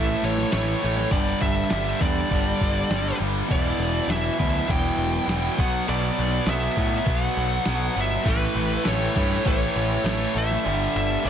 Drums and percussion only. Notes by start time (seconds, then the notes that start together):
0.38 snare
0.52 snare, crash
0.98 snare
1.10 kick, crash
1.41 kick
1.70 snare, crash
2.01 kick
2.31 kick, crash
2.61 kick
2.90 snare, crash
3.50 kick, crash
4.10 snare, crash
4.39 kick
4.69 kick, crash
5.29 snare, crash
5.58 kick
5.89 crash
6.46 snare, crash
6.77 kick
7.04 kick, crash
7.65 snare, crash
8.24 kick, crash
8.85 snare, crash
9.16 kick
9.45 kick, crash
10.06 snare, crash
10.51 snare
10.66 crash
11.25 crash